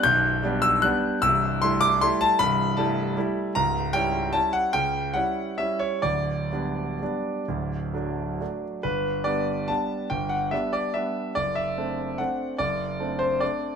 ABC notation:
X:1
M:3/4
L:1/8
Q:1/4=146
K:G
V:1 name="Grand piano"
g'3 e' f'2 | e'2 c' d' c' a | b2 a2 z2 | ^a2 g2 =a f |
g2 f2 e ^c | d6- | d4- d z | B2 d2 a2 |
g f e d e2 | d e3 f2 | d3 c d2 |]
V:2 name="Grand piano"
[B,,,,B,,,]2 [G,B,D]2 [G,B,D]2 | [C,,,C,,]2 [G,A,E]2 [G,A,E]2 | [C,,,C,,]2 [G,A,E]2 [G,A,E]2 | [^C,,,^C,,]2 [G,^CE]2 [G,CE]2 |
[^C,,^C,]2 [G,^CE]2 [G,CE]2 | [D,,,D,,]2 [G,B,D]2 [G,B,D]2 | [D,,,D,,]2 [F,A,D]2 [F,A,D]2 | G,,,2 [G,B,D]2 [G,B,D]2 |
G,,,2 [G,B,D]2 [G,B,D]2 | F,,,2 [A,CD]2 [A,CD]2 | F,,,2 [A,CD]2 [A,CD]2 |]